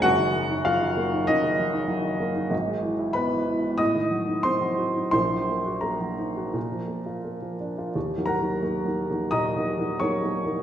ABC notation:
X:1
M:4/4
L:1/16
Q:1/4=90
K:Ebm
V:1 name="Upright piano"
[Gg]4 [Ff]4 [Ee]8 | z4 [=B=b]4 [ee']4 [=c=c']4 | [=c=c']4 [Bb]8- [Bb]2 z2 | z2 [Bgb]6 [ebe']4 [dd']4 |]
V:2 name="Upright piano"
[G,,,G,,] E, G, E G, E, B, E G,, E, G, E G, E, B, E | [^G,,,^G,,] ^G, =E, =E =B, E, E B, =A,, _E, ^F, _E =C F, ^F E | [B,,,B,,] G, B, G B, G, E G B,, F, B, F B, F, =D F | (3E,,2 [G,B,E]2 [G,B,E]2 (3[G,B,E]2 [G,B,E]2 [G,B,E]2 (3B,,2 [G,B,E]2 [G,B,E]2 (3[G,B,E]2 [G,B,E]2 [G,B,E]2 |]